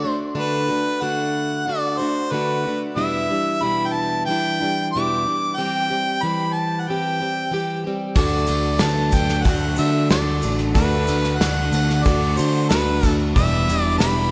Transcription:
Already playing: harmonica D5
0.04 steel-string acoustic guitar A3 D4 F#4
0.35 steel-string acoustic guitar D3 A3 D4 F#4, harmonica B4
0.68 steel-string acoustic guitar A3 D4 F#4
1.02 steel-string acoustic guitar D3 A3 D4 F#4, harmonica F#5
1.66 steel-string acoustic guitar D3 A3 D4 F#4, harmonica D5
1.99 steel-string acoustic guitar A3 D4 F#4, harmonica C5
2.31 steel-string acoustic guitar D3 A3 D4 F#4, harmonica B4
2.66 steel-string acoustic guitar A3 D4 F#4
2.95 steel-string acoustic guitar E2 B2 E3 G3 D4 E4, harmonica E5
3.29 steel-string acoustic guitar E3 G3 D4 E4
3.61 steel-string acoustic guitar E2 B2 E3 G3 D4 E4, harmonica B5
3.87 harmonica G5
3.93 harmonica A5
4.25 steel-string acoustic guitar E3 G3, harmonica G5
4.29 steel-string acoustic guitar D4 E4
4.60 steel-string acoustic guitar E3 G3 D4 E4
4.93 steel-string acoustic guitar E2 B2 E3 G3 D4 E4, harmonica D6
5.26 steel-string acoustic guitar E3 G3 D4 E4
5.56 steel-string acoustic guitar E3 G3 C4 G4, harmonica G5
5.90 steel-string acoustic guitar G3 C4 G4
6.22 steel-string acoustic guitar E3 G3 C4 G4, harmonica B5
6.53 harmonica A5
6.80 harmonica F#5
6.88 steel-string acoustic guitar E3 G3 C4 G4, harmonica G5
7.20 steel-string acoustic guitar G3 C4 G4
7.51 steel-string acoustic guitar E3 G3 C4 G4
7.84 steel-string acoustic guitar G3 C4 G4
8.15 picked electric bass D2, steel-string acoustic guitar D3 A3 D4 F#4, string section F#3 A3 D4 A4, upright piano F#4 A4 D5, harmonica D5, kick, crash, shaker
8.47 picked electric bass D2, steel-string acoustic guitar F#4, ride, shaker
8.52 steel-string acoustic guitar A3 D4
8.64 shaker
8.79 picked electric bass D2, steel-string acoustic guitar D3 A3 D4, upright piano F#4 A4 B4, harmonica A5, snare, ride, shaker
9.12 picked electric bass D2, harmonica G5, kick, ride, shaker
9.29 snare, shaker
9.43 picked electric bass D2, steel-string acoustic guitar D3 A3 D4, upright piano F#4 A4 D5, harmonica F#5, kick, ride, shaker
9.48 steel-string acoustic guitar F#4
9.76 picked electric bass D3, steel-string acoustic guitar A3 D4 F#4, harmonica E5, ride, shaker
10.09 picked electric bass D2, steel-string acoustic guitar D3 A3 D4 F#4, upright piano F#4 A4 D5, harmonica D5, snare, ride, shaker
10.42 picked electric bass A1, steel-string acoustic guitar A3 D4 F#4, ride, shaker
10.59 snare
10.74 picked electric bass D2, steel-string acoustic guitar D3 A3 D4 F#4, string section A3 D4 F#4 A4, upright piano F#4 A4 D5, harmonica B4, kick, ride, shaker
11.07 picked electric bass D2, steel-string acoustic guitar A3 D4 F#4, ride, shaker
11.25 snare, shaker
11.37 picked electric bass D2, steel-string acoustic guitar D3, upright piano F#4 A4, harmonica F#5, snare, ride, shaker
11.41 steel-string acoustic guitar A3 D4 F#4, upright piano D5
11.73 picked electric bass D2, ride, shaker
11.90 snare, shaker
12.03 picked electric bass D2, steel-string acoustic guitar D3 A3 D4 F#4, upright piano F#4 A4 D5, harmonica D5, kick, ride, shaker
12.37 picked electric bass D3, steel-string acoustic guitar D4 F#4, harmonica C5, ride, shaker
12.41 steel-string acoustic guitar A3
12.69 picked electric bass D2, steel-string acoustic guitar D3 A3 D4, harmonica B4, snare, ride, shaker
12.73 steel-string acoustic guitar F#4, upright piano F#4 A4 D5
13.03 picked electric bass D2, steel-string acoustic guitar A3 D4 F#4, kick, ride, shaker
13.35 picked electric bass E1, steel-string acoustic guitar E2 B2 E3 G3, string section D4 E4 G4 B4, upright piano E4 D5, harmonica E5, kick, ride, shaker
13.39 steel-string acoustic guitar D4 E4, upright piano G4
13.68 picked electric bass E1, steel-string acoustic guitar G3 D4 E4, ride, shaker
13.73 steel-string acoustic guitar E3
13.82 harmonica D5, shaker
13.98 picked electric bass E1, steel-string acoustic guitar E2 B2, upright piano E4 G4, harmonica B5, snare, ride, shaker
14.02 steel-string acoustic guitar E3 G3 D4 E4, upright piano D5

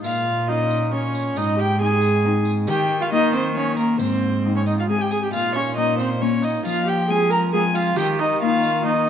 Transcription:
0.04 harp A#2, cello A#2, viola F4, violin F5, tambourine
0.48 harp C#4 F4, viola D#4, violin D#5
0.70 tambourine
0.93 viola C#4, harp C#4 F4, violin C#5
1.15 tambourine
1.36 harp G#2, cello G#2, viola D#4, violin D#5, tambourine
1.58 viola G4, violin G5
1.80 harp C4 D#4, viola G#4, violin G#5
2.02 tambourine
2.25 harp C4 D#4
2.45 tambourine
2.67 harp D#3, cello D#3, viola G4, violin G5, tambourine
3.01 viola F4, violin F5
3.12 harp A#3 D#4, viola D#4, violin D#5
3.33 viola C4, violin C5, tambourine
3.56 harp A#3 D#4, viola C#4, violin C#5
3.77 viola A#3, violin A#4, tambourine
4.00 harp G#2, cello G#2, viola C4, violin C5, tambourine
4.45 harp G#3 C4 D#4
4.56 viola C#4, violin C#5
4.67 viola D#4, violin D#5, tambourine
4.79 viola F4, violin F5
4.89 harp G#3 C4 D#4, viola G#4, violin G#5
5.00 viola G4, violin G5
5.11 viola G#4, violin G#5, tambourine
5.23 viola G4, violin G5
5.33 cello A#2, harp A#2, viola F4, violin F5, tambourine
5.55 viola C#4, violin C#5
5.76 harp A#3 C#4, viola D#4, violin D#5
5.99 viola C4, violin C5, tambourine
6.21 harp A#3 C#4, viola C#4, violin C#5
6.42 viola D#4, violin D#5, tambourine
6.65 cello F3, harp F3, viola F4, violin F5, tambourine
6.87 viola G4, violin G5
7.09 harp G#3 C4 F4, viola G#4, violin G#5
7.30 viola A#4, violin A#5, tambourine
7.53 harp G#3 C4 F4, viola G#4, violin G#5
7.74 viola F4, violin F5, tambourine
7.96 harp D#3, cello D#3, viola G4, violin G5, tambourine
8.19 viola D#4, violin D#5
8.41 harp A#3 D#4, viola F4, violin F5
8.63 tambourine
8.85 harp A#3 D#4, viola D#4, violin D#5

